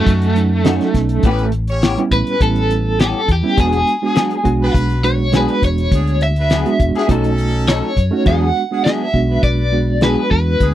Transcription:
Already playing: F#3 A3 C#4 D#4 F#4
0.07 F#2, kick, closed hi-hat
0.22 closed hi-hat
0.35 F#3 A3 C#4 D#4, closed hi-hat
0.64 D#3 F#3 A3 C#4 D#4 F#4, snare, closed hi-hat
0.81 snare, closed hi-hat
0.94 B1, kick, snare, closed hi-hat
1.09 closed hi-hat
1.23 A1 E3 B3 C#4 G4 B4, kick, closed hi-hat
1.38 closed hi-hat
1.52 closed hi-hat
1.68 C#4 G4 C#5, closed hi-hat
1.82 E3 B3 C#4 G4, snare, closed hi-hat
1.98 G3 B3 C#4 E4, closed hi-hat
2.11 A1 B4, kick, closed hi-hat
2.27 C#4 G4 B4, closed hi-hat
2.40 A1 G3 B3 C#4 E4 A4, kick, closed hi-hat
2.56 closed hi-hat
2.71 closed hi-hat
2.99 E3 B3 C#4 G4 A4, snare, closed hi-hat
3.28 E2, kick, closed hi-hat
3.32 G4
3.43 G3 B3 C#4 E4
3.56 E1 F#3 G#3 B3 D4 F#4 G#4, kick, closed hi-hat
3.73 closed hi-hat
3.87 closed hi-hat
4.02 G#3 B3 D4 F#4 G#4
4.15 F#3 B3 D4 G#4, snare, closed hi-hat
4.31 closed hi-hat
4.44 B1 G#3 B3 D4 F#4, kick, closed hi-hat
4.62 D4 F#4 B4
4.74 B1, kick, closed hi-hat
4.89 closed hi-hat
5.03 G#3 B3 D4 F#4 C#5, closed hi-hat
5.32 F#3 G#3 B3 D4 F#4 G#4, snare, closed hi-hat
5.37 B4
5.48 closed hi-hat
5.62 E1 C#5, kick, closed hi-hat
5.78 closed hi-hat
5.92 D2 D4 F#4 G#4, kick, closed hi-hat
6.07 closed hi-hat
6.21 E5, closed hi-hat
6.36 D4 F#4 B4, closed hi-hat
6.50 F#3 B3 D4 G#4, snare, closed hi-hat
6.66 G#3 B3 D4 F#4, closed hi-hat
6.79 E1, kick, closed hi-hat
6.94 B3 D4 F#4 G#4, muted fingered electric bass stroke, closed hi-hat
7.08 B1 F#3 A3 C#4 D#4 F#4 A4, kick, closed hi-hat
7.24 closed hi-hat
7.38 closed hi-hat
7.67 F#3 C#4 D#4 A4 C#5, snare, closed hi-hat
7.97 F#2, kick, closed hi-hat
8.11 A3 C#4 D#4 F#4
8.25 E2 F#3 G#3 B3 D4 F#4 G#4 F#5, kick, closed hi-hat
8.70 G#3 B3 D4 F#4 G#4
8.84 F#3 B3 D4 G#4 E5, snare, closed hi-hat
9.13 B1 G#3 B3 D4 F#4, kick
9.29 D4 F#4 B4
9.42 B1 D5, kick, closed hi-hat
9.72 G#3 B3 D4 F#4
10.01 F#3 G#3 B3 D4 F#4 G#4 B4, snare, closed hi-hat
10.31 E2 B4, kick
10.60 D2 D4 F#4 G#4, kick, closed hi-hat

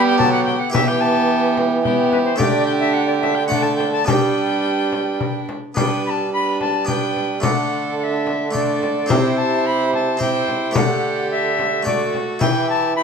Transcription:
Already playing: G3 B3 D4 G4 B4 G5
0.06 G5
0.18 D3 F#3 A5, frame drum
0.32 F#5
0.44 G5, frame drum
0.59 F#5
0.70 E3 B3 E4 G4 B4 E5
0.75 frame drum
0.88 G5
1.01 A5
1.57 frame drum
1.82 B3 G4 G5, frame drum
2.12 B4, frame drum
2.24 C5
2.36 D3 A3 D4 G4 D5, frame drum
2.40 D3 G4
2.66 G5
2.80 E5
2.93 F#5
3.07 D5
3.20 E5, frame drum
3.35 G5
3.47 A3 A4 D5 F#5
3.51 D4 A4, frame drum
3.62 A5
3.76 G5
3.80 frame drum
3.92 A5
4.04 G3 B3 D4 G4 B4 D5 A5, frame drum
4.10 G5
4.92 frame drum
5.20 frame drum
5.49 frame drum
5.75 G3 B3 D4 B4 D5 G5, frame drum
6.06 A5 B5
6.32 D4 B4 B5
6.61 A5, frame drum
6.85 B3 D4 B4 D5 G5, frame drum
7.16 frame drum
7.40 D3 A3 D4 A4 D5 F#5, frame drum
7.99 F#5
8.03 E5
8.27 frame drum
8.51 A3 D4 A4 D5
8.55 D5, frame drum
8.83 frame drum
9.06 C3 C4 E4 G4 C5 E5, frame drum
9.11 C3 G5
9.37 A5
9.66 B5
9.93 A5, frame drum
10.17 C4 E4 G4 E5, frame drum
10.21 C5 G5
10.48 frame drum
10.71 A3 G4 D5
10.75 D3 G4 A4 F#5, frame drum
11.31 E5
11.59 frame drum
11.83 A3 F#4 D5, frame drum
11.87 A4
12.15 frame drum
12.39 E3 E4 B4 G5, frame drum
12.44 G4
12.69 A5
12.96 E4 G4 B5

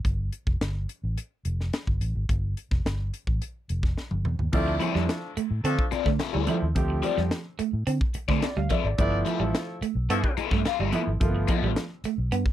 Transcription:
0.05 G1, kick, closed hi-hat
0.32 closed hi-hat
0.47 F1, kick
0.61 G1, snare, closed hi-hat
0.89 closed hi-hat
1.04 A1
1.17 closed hi-hat
1.45 F1, closed hi-hat
1.61 snare
1.73 snare, closed hi-hat
1.87 G1, kick
2.01 A1, closed hi-hat
2.15 G#1
2.29 G1, kick, closed hi-hat
2.57 closed hi-hat
2.71 F1, kick, snare
2.85 G1, snare, closed hi-hat
3.14 closed hi-hat
3.27 A1, kick
3.42 closed hi-hat
3.69 F1, closed hi-hat
3.83 kick, snare
3.98 snare
4.11 G1, high tom
4.25 E2, mid tom
4.39 D#2, floor tom
4.53 D2 F3 A3 C4 D4 E4 F4 D5, kick, crash
4.68 muted clean electric guitar stroke
4.80 F3 C4 F4 A4 D5, closed hi-hat
4.95 F2 F3 G3 A3 D4 A4, snare
5.09 snare, closed hi-hat
5.37 A3, muted fingered electric bass stroke, closed hi-hat
5.51 A2
5.63 D3 F3 A3 C4 D4 A4, closed hi-hat
5.79 kick
5.91 C4 F4 A4 D5, muted clean electric guitar stroke, muted fingered electric bass stroke, closed hi-hat
6.06 D3 A3, kick, snare
6.19 C4 F4 A4 E5, muted clean electric guitar stroke, muted fingered electric bass stroke, snare, closed hi-hat
6.34 D2 G3 C4 F4 A4 D5
6.47 F3 A3 C4 E4, closed hi-hat
6.62 D#2
6.75 D2 F3 A3 C4 G4, kick, closed hi-hat
6.90 muted clean electric guitar stroke
7.03 F3 C4 F4 A4 D5, closed hi-hat
7.17 F2 G3, snare
7.31 snare, closed hi-hat
7.59 A3, muted fingered electric bass stroke, closed hi-hat
7.73 A2
7.87 D3 C4, closed hi-hat
8.01 kick
8.14 muted fingered electric bass stroke, muted clean electric guitar stroke, closed hi-hat
8.28 D3 A3 C4 F4 A4 D5, kick, snare
8.42 D5, muted clean electric guitar stroke, muted fingered electric bass stroke, snare, closed hi-hat
8.57 D2 G3 F5
8.70 F3 C4 F4 A4 D5 E5, kick, closed hi-hat
8.84 G#1 D5
8.97 G1 F3 A3 B3 D4 E4 A4 D5, kick, closed hi-hat
9.12 muted clean electric guitar stroke
9.25 F3 B3 F4 A4 E5, closed hi-hat
9.40 A1 F3 G3 A3 E4 A4
9.55 snare, closed hi-hat
9.81 A3, muted fingered electric bass stroke, closed hi-hat
9.95 B1
10.09 G2 F3 A3 B3 E4 A4, closed hi-hat
10.24 kick
10.37 B3 F4 A4 E5, muted fingered electric bass stroke, muted clean electric guitar stroke, closed hi-hat
10.51 G2 A3, kick, snare
10.65 B3 F4 A4 F5, muted fingered electric bass stroke, muted clean electric guitar stroke, snare, closed hi-hat
10.79 G1 G3 B3 F4 A4 E5
10.92 F3 A3 B3 E4, closed hi-hat
11.07 G#1
11.20 G1 F3 A3 A#3 F4, kick, closed hi-hat
11.28 B3
11.36 muted clean electric guitar stroke
11.48 F3 B3 F4 A4 E5, kick, closed hi-hat
11.62 A1 G3
11.76 snare, closed hi-hat
12.04 A3, muted fingered electric bass stroke, closed hi-hat
12.18 B1
12.32 G2 B3, closed hi-hat
12.46 kick

